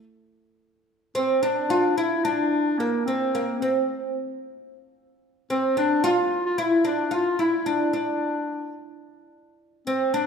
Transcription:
0, 0, Header, 1, 3, 480
1, 0, Start_track
1, 0, Tempo, 544316
1, 306, Time_signature, 4, 2, 24, 8
1, 9052, End_track
2, 0, Start_track
2, 0, Title_t, "Clarinet"
2, 0, Program_c, 0, 71
2, 1027, Note_on_c, 0, 60, 73
2, 1258, Note_on_c, 0, 62, 80
2, 1271, Note_off_c, 0, 60, 0
2, 1736, Note_on_c, 0, 64, 75
2, 1749, Note_off_c, 0, 62, 0
2, 1973, Note_on_c, 0, 62, 84
2, 1987, Note_off_c, 0, 64, 0
2, 2453, Note_on_c, 0, 58, 69
2, 2466, Note_off_c, 0, 62, 0
2, 2685, Note_off_c, 0, 58, 0
2, 2690, Note_on_c, 0, 60, 79
2, 3144, Note_off_c, 0, 60, 0
2, 3166, Note_on_c, 0, 60, 65
2, 3622, Note_off_c, 0, 60, 0
2, 4857, Note_on_c, 0, 60, 75
2, 5085, Note_off_c, 0, 60, 0
2, 5095, Note_on_c, 0, 62, 84
2, 5330, Note_on_c, 0, 65, 86
2, 5343, Note_off_c, 0, 62, 0
2, 5688, Note_off_c, 0, 65, 0
2, 5693, Note_on_c, 0, 65, 79
2, 5807, Note_on_c, 0, 64, 84
2, 5820, Note_off_c, 0, 65, 0
2, 6056, Note_on_c, 0, 62, 72
2, 6070, Note_off_c, 0, 64, 0
2, 6299, Note_on_c, 0, 65, 75
2, 6312, Note_off_c, 0, 62, 0
2, 6532, Note_on_c, 0, 64, 75
2, 6545, Note_off_c, 0, 65, 0
2, 6771, Note_on_c, 0, 62, 74
2, 6784, Note_off_c, 0, 64, 0
2, 7011, Note_off_c, 0, 62, 0
2, 7016, Note_on_c, 0, 62, 66
2, 7706, Note_off_c, 0, 62, 0
2, 8699, Note_on_c, 0, 60, 75
2, 8946, Note_on_c, 0, 62, 77
2, 8959, Note_off_c, 0, 60, 0
2, 9052, Note_off_c, 0, 62, 0
2, 9052, End_track
3, 0, Start_track
3, 0, Title_t, "Oud"
3, 0, Program_c, 1, 24
3, 1014, Note_on_c, 1, 60, 88
3, 1255, Note_off_c, 1, 60, 0
3, 1258, Note_on_c, 1, 62, 83
3, 1485, Note_off_c, 1, 62, 0
3, 1500, Note_on_c, 1, 65, 92
3, 1739, Note_off_c, 1, 65, 0
3, 1743, Note_on_c, 1, 64, 87
3, 1979, Note_off_c, 1, 64, 0
3, 1982, Note_on_c, 1, 62, 88
3, 2469, Note_on_c, 1, 58, 69
3, 2479, Note_off_c, 1, 62, 0
3, 2713, Note_on_c, 1, 60, 66
3, 2715, Note_off_c, 1, 58, 0
3, 2952, Note_on_c, 1, 58, 78
3, 2956, Note_off_c, 1, 60, 0
3, 3190, Note_off_c, 1, 58, 0
3, 3194, Note_on_c, 1, 60, 69
3, 3637, Note_off_c, 1, 60, 0
3, 4851, Note_on_c, 1, 60, 78
3, 5085, Note_off_c, 1, 60, 0
3, 5088, Note_on_c, 1, 62, 78
3, 5320, Note_off_c, 1, 62, 0
3, 5324, Note_on_c, 1, 65, 93
3, 5800, Note_off_c, 1, 65, 0
3, 5804, Note_on_c, 1, 64, 90
3, 6033, Note_off_c, 1, 64, 0
3, 6037, Note_on_c, 1, 62, 85
3, 6267, Note_off_c, 1, 62, 0
3, 6270, Note_on_c, 1, 65, 78
3, 6513, Note_off_c, 1, 65, 0
3, 6517, Note_on_c, 1, 64, 68
3, 6752, Note_off_c, 1, 64, 0
3, 6756, Note_on_c, 1, 62, 80
3, 6985, Note_off_c, 1, 62, 0
3, 6996, Note_on_c, 1, 62, 69
3, 7696, Note_off_c, 1, 62, 0
3, 8703, Note_on_c, 1, 60, 81
3, 8937, Note_off_c, 1, 60, 0
3, 8940, Note_on_c, 1, 62, 93
3, 9052, Note_off_c, 1, 62, 0
3, 9052, End_track
0, 0, End_of_file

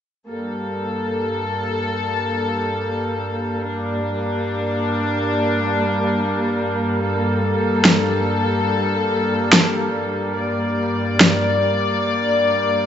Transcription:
0, 0, Header, 1, 3, 480
1, 0, Start_track
1, 0, Key_signature, -2, "minor"
1, 0, Tempo, 500000
1, 12347, End_track
2, 0, Start_track
2, 0, Title_t, "String section"
2, 0, Program_c, 0, 48
2, 286, Note_on_c, 0, 43, 73
2, 286, Note_on_c, 0, 58, 67
2, 286, Note_on_c, 0, 69, 79
2, 287, Note_on_c, 0, 55, 67
2, 3498, Note_off_c, 0, 69, 0
2, 3508, Note_on_c, 0, 62, 80
2, 6720, Note_off_c, 0, 62, 0
2, 6732, Note_on_c, 0, 69, 81
2, 9943, Note_off_c, 0, 69, 0
2, 9952, Note_on_c, 0, 74, 82
2, 12347, Note_off_c, 0, 43, 0
2, 12347, Note_off_c, 0, 55, 0
2, 12347, Note_off_c, 0, 58, 0
2, 12347, Note_off_c, 0, 74, 0
2, 12347, End_track
3, 0, Start_track
3, 0, Title_t, "Drums"
3, 7536, Note_on_c, 9, 38, 106
3, 7632, Note_off_c, 9, 38, 0
3, 9147, Note_on_c, 9, 38, 106
3, 9243, Note_off_c, 9, 38, 0
3, 10758, Note_on_c, 9, 38, 101
3, 10854, Note_off_c, 9, 38, 0
3, 12347, End_track
0, 0, End_of_file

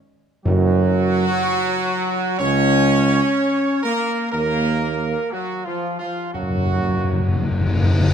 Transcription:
0, 0, Header, 1, 6, 480
1, 0, Start_track
1, 0, Key_signature, 6, "major"
1, 0, Tempo, 969305
1, 227, Time_signature, 4, 2, 24, 8
1, 2149, Tempo, 1013514
1, 3947, End_track
2, 0, Start_track
2, 0, Title_t, "Trumpet section"
2, 0, Program_c, 0, 61
2, 230, Note_on_c, 0, 66, 127
2, 1175, Note_off_c, 0, 66, 0
2, 1184, Note_on_c, 0, 73, 127
2, 1883, Note_off_c, 0, 73, 0
2, 1897, Note_on_c, 0, 70, 117
2, 2127, Note_off_c, 0, 70, 0
2, 2138, Note_on_c, 0, 70, 116
2, 2597, Note_off_c, 0, 70, 0
2, 2613, Note_on_c, 0, 66, 101
2, 2768, Note_on_c, 0, 65, 100
2, 2776, Note_off_c, 0, 66, 0
2, 2921, Note_off_c, 0, 65, 0
2, 2927, Note_on_c, 0, 65, 97
2, 3082, Note_off_c, 0, 65, 0
2, 3095, Note_on_c, 0, 66, 104
2, 3805, Note_off_c, 0, 66, 0
2, 3947, End_track
3, 0, Start_track
3, 0, Title_t, "French horn section"
3, 0, Program_c, 1, 60
3, 224, Note_on_c, 1, 54, 127
3, 1172, Note_off_c, 1, 54, 0
3, 1191, Note_on_c, 1, 61, 127
3, 1886, Note_off_c, 1, 61, 0
3, 1904, Note_on_c, 1, 58, 119
3, 2131, Note_off_c, 1, 58, 0
3, 2146, Note_on_c, 1, 58, 121
3, 2601, Note_off_c, 1, 58, 0
3, 2618, Note_on_c, 1, 54, 89
3, 2768, Note_off_c, 1, 54, 0
3, 2782, Note_on_c, 1, 53, 90
3, 2930, Note_off_c, 1, 53, 0
3, 2939, Note_on_c, 1, 53, 84
3, 3089, Note_off_c, 1, 53, 0
3, 3100, Note_on_c, 1, 54, 94
3, 3807, Note_off_c, 1, 54, 0
3, 3947, End_track
4, 0, Start_track
4, 0, Title_t, "Trombone section"
4, 0, Program_c, 2, 61
4, 224, Note_on_c, 2, 54, 127
4, 1172, Note_off_c, 2, 54, 0
4, 1186, Note_on_c, 2, 61, 127
4, 1904, Note_off_c, 2, 61, 0
4, 1909, Note_on_c, 2, 58, 109
4, 2133, Note_off_c, 2, 58, 0
4, 2151, Note_on_c, 2, 58, 114
4, 2603, Note_off_c, 2, 58, 0
4, 2618, Note_on_c, 2, 54, 99
4, 2767, Note_off_c, 2, 54, 0
4, 2780, Note_on_c, 2, 53, 90
4, 2929, Note_off_c, 2, 53, 0
4, 2938, Note_on_c, 2, 53, 84
4, 3088, Note_off_c, 2, 53, 0
4, 3098, Note_on_c, 2, 54, 89
4, 3806, Note_off_c, 2, 54, 0
4, 3947, End_track
5, 0, Start_track
5, 0, Title_t, "Timpani"
5, 0, Program_c, 3, 47
5, 225, Note_on_c, 3, 42, 119
5, 927, Note_off_c, 3, 42, 0
5, 3098, Note_on_c, 3, 42, 50
5, 3130, Note_off_c, 3, 42, 0
5, 3136, Note_on_c, 3, 42, 53
5, 3165, Note_off_c, 3, 42, 0
5, 3171, Note_on_c, 3, 42, 53
5, 3201, Note_off_c, 3, 42, 0
5, 3207, Note_on_c, 3, 42, 58
5, 3242, Note_off_c, 3, 42, 0
5, 3248, Note_on_c, 3, 42, 55
5, 3275, Note_off_c, 3, 42, 0
5, 3280, Note_on_c, 3, 42, 58
5, 3312, Note_off_c, 3, 42, 0
5, 3318, Note_on_c, 3, 42, 57
5, 3348, Note_off_c, 3, 42, 0
5, 3354, Note_on_c, 3, 42, 67
5, 3388, Note_off_c, 3, 42, 0
5, 3394, Note_on_c, 3, 42, 70
5, 3424, Note_off_c, 3, 42, 0
5, 3429, Note_on_c, 3, 42, 72
5, 3461, Note_off_c, 3, 42, 0
5, 3466, Note_on_c, 3, 42, 72
5, 3499, Note_off_c, 3, 42, 0
5, 3505, Note_on_c, 3, 42, 73
5, 3536, Note_off_c, 3, 42, 0
5, 3542, Note_on_c, 3, 42, 78
5, 3574, Note_off_c, 3, 42, 0
5, 3580, Note_on_c, 3, 42, 82
5, 3610, Note_off_c, 3, 42, 0
5, 3616, Note_on_c, 3, 42, 84
5, 3646, Note_off_c, 3, 42, 0
5, 3652, Note_on_c, 3, 42, 95
5, 3688, Note_off_c, 3, 42, 0
5, 3694, Note_on_c, 3, 42, 95
5, 3720, Note_off_c, 3, 42, 0
5, 3725, Note_on_c, 3, 42, 106
5, 3761, Note_off_c, 3, 42, 0
5, 3766, Note_on_c, 3, 42, 110
5, 3795, Note_off_c, 3, 42, 0
5, 3801, Note_on_c, 3, 42, 113
5, 3837, Note_off_c, 3, 42, 0
5, 3843, Note_on_c, 3, 42, 110
5, 3878, Note_off_c, 3, 42, 0
5, 3883, Note_on_c, 3, 42, 114
5, 3919, Note_off_c, 3, 42, 0
5, 3925, Note_on_c, 3, 42, 115
5, 3947, Note_off_c, 3, 42, 0
5, 3947, End_track
6, 0, Start_track
6, 0, Title_t, "Tuba"
6, 0, Program_c, 4, 58
6, 226, Note_on_c, 4, 42, 126
6, 624, Note_off_c, 4, 42, 0
6, 1192, Note_on_c, 4, 37, 126
6, 1589, Note_off_c, 4, 37, 0
6, 2145, Note_on_c, 4, 39, 102
6, 2540, Note_off_c, 4, 39, 0
6, 3097, Note_on_c, 4, 42, 91
6, 3500, Note_off_c, 4, 42, 0
6, 3947, End_track
0, 0, End_of_file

